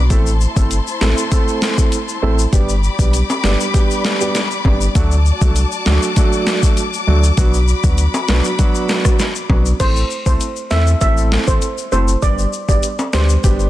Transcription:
Already playing: B1
0.10 A1 A3 C4 E4 A4 C5 A5 C6, kick, closed hi-hat, shaker
0.27 shaker
0.41 shaker
0.56 G1 A3 C4 E4 A4, kick, shaker
0.71 closed hi-hat, shaker
0.87 shaker
1.01 A1 A3 C4 E4 A4, snare, shaker
1.18 shaker
1.31 A3 C4 E4 A4, kick, closed hi-hat, shaker
1.48 shaker
1.62 snare, shaker
1.78 A3 C4 E4 A4, kick, shaker
1.92 closed hi-hat, shaker
2.09 shaker
2.22 A1 A3 C4 E4 A4
2.39 shaker
2.53 G1 G3 B3 D4 G4 D5 B5 D6, kick, closed hi-hat, shaker
2.69 shaker
2.84 shaker
2.99 B1 G3 B3 D4 G4, kick, shaker
3.13 closed hi-hat, shaker
3.30 high timbale, shaker
3.43 G1 G3 B3 D4 G4, snare, shaker
3.60 shaker
3.74 G3 B3 D4 G4, kick, closed hi-hat, shaker
3.91 shaker
4.05 snare, shaker
4.20 G3 B3 D4 G4, shaker
4.35 snare, closed hi-hat, shaker
4.51 shaker
4.65 G1 G3 B3 D4 G4, kick, high timbale
4.81 shaker
4.95 D2 F#3 A3 D4 F#4 A5 D6, kick, closed hi-hat, shaker
5.11 shaker
5.26 shaker
5.41 C2 F#3 A3 D4 F#4, kick, shaker
5.56 closed hi-hat, shaker
5.72 shaker
5.86 D2 F#3 A3 D4 F#4, snare, shaker
6.02 shaker
6.16 F#3 A3 D4 F#4, kick, closed hi-hat, shaker
6.33 shaker
6.47 snare, shaker
6.63 F#3 A3 D4 F#4, kick, shaker
6.77 closed hi-hat, shaker
6.93 shaker
7.07 D2 F#3 A3 D4 F#4
7.24 shaker
7.37 B1 F#3 B3 D4 F#4 B5, kick, closed hi-hat, shaker
7.54 shaker
7.68 shaker
7.84 D2 F#3 B3 D4 F#4, kick, shaker
7.98 closed hi-hat, shaker
8.14 high timbale, shaker
8.28 B1 F#3 B3 D4 F#4, snare, shaker
8.44 shaker
8.59 F#3 B3 D4 F#4, kick, closed hi-hat, shaker
8.75 shaker
8.89 snare, shaker
9.05 F#3 B3 D4 F#4, kick, cross-stick, shaker
9.19 snare, closed hi-hat, shaker
9.35 shaker
9.50 B1 F#3 B3 D4 F#4, kick, high timbale
9.66 shaker
9.80 A1 A3 C4 E4 A4 C5, kick, closed hi-hat, crash, shaker
9.96 shaker
10.10 shaker
10.26 C2 A3 C4 E4 A4 C5, kick, shaker
10.40 closed hi-hat, shaker
10.56 shaker
10.71 E2 A3 C4 E4 A4 E5, snare, shaker
10.87 shaker
11.01 A1 A3 C4 E4 A4 E5, kick, closed hi-hat, shaker
11.17 shaker
11.32 snare
11.47 A1 A3 C4 E4 A4 C5, kick, shaker
11.62 closed hi-hat, shaker
11.78 shaker
11.92 F#1 A3 C4 E4 A4 C5, shaker
12.08 shaker
12.22 G1 G3 B3 D4 G4 D5, kick, closed hi-hat, shaker
12.39 shaker
12.53 shaker
12.69 G1 G3 B3 D4 G4 D5, kick, shaker
12.83 closed hi-hat, shaker
12.99 high timbale, shaker
13.13 D2 G3 B3 D4 G4 C5, snare, shaker
13.29 shaker
13.44 G1 G3 B3 D4 G4, kick, closed hi-hat, shaker
13.60 shaker

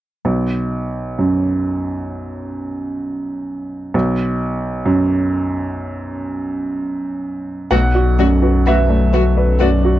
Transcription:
0.25 B1
1.18 F#2
3.94 B1
4.85 F#2
7.71 B1 F#3 A3 F#4 A4 B4 F#5
7.94 F#4 D5
8.19 F#2 A3 F#4 D5
8.42 F#4 B4
8.66 A3 F#4 B4 E5 F#5
8.89 A3 D5
9.13 A3 F#4 B4
9.37 B4 D5
9.60 F#2 A3 F#4 B4 D5
9.83 F#4 D5

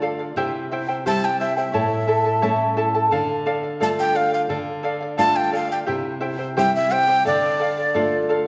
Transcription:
Already playing: D3 A3 D4 F4
0.02 A4 D5 F5
0.19 D5 F5
0.36 C3 E4 G4 C5 E5 G5
0.71 E4 C5 E5 G5
0.88 E4 C5 G5
1.06 G3 C4 E4 G4 C5 E5 G5 A5
1.25 G5
1.40 E4 C5 E5 G5
1.57 E4 C5 E5 G5
1.73 A2 E4 A4 C#5 E5 A5
2.07 E4 A4 E5 A5
2.25 E4 A4 A5
2.42 A3 C#4 E4 A4 C#5 E5 A5
2.77 E4 A4 E5 A5
2.94 E4 A4 A5
3.11 D3 A4 D5 F5
3.46 A4 D5 F5
3.63 D5 F5
3.80 A3 D4 F4 A4 D5 F5 A5
3.99 G5
4.14 A4 D5 F5
4.31 D5 F5
4.49 D3 A4 D5 F5
4.83 A4 D5 F5
5.01 D5 F5
5.17 A3 D4 F4 A4 D5 F5 A5
5.36 G5
5.52 A4 D5 F5
5.69 D5 F5 G5
5.87 C3 E4 G4 C5 E5 G5
6.21 E4 C5 E5 G5
6.38 E4 C5 G5
6.57 G3 C4 E4 G4 C5 E5 G5
6.76 E5
6.91 E4 C5 E5 G5
7.07 E4 C5 G5
7.25 D3 A4 D5 F5
7.59 A4 D5 F5
7.77 D5 F5
7.94 A3 D4 F4 A4 D5 F5
8.29 A4 D5 F5

